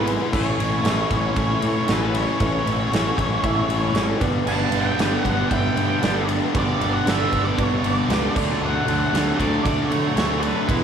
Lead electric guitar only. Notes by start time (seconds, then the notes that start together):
0.35 C#5
1.15 C#5
1.65 C#5
1.93 B4
2.18 C#5
2.45 C#5
4.47 A5
4.80 G5
5.30 F#5
5.48 G5
6.59 D5
6.93 F#5
7.09 E5
7.44 D5
7.63 C#5
7.86 D5
8.66 F#5
9.00 F#5
9.37 D5
9.64 D5
9.87 C#5
10.41 B4